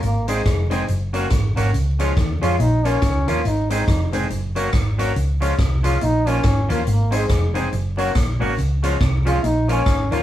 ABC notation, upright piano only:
X:1
M:4/4
L:1/8
Q:"Swing" 1/4=140
K:Db
V:1 name="Upright piano"
z [CEAc] z [CEAc] z [DGBd] z [DGBd] | z [DFAd] z [DFAd] z [DFBd] z [DFBd] | z [CEAc] z [CEAc] z [DGBd] z [DGBd] | z [DFAd] z [DFAd] z [DFBd] z [DFBd] |
z [CEAc] z [CEAc] z [DGBd] z [DGBd] | z [DFAd] z [DFAd] z [DFBd] z [DFBd] |]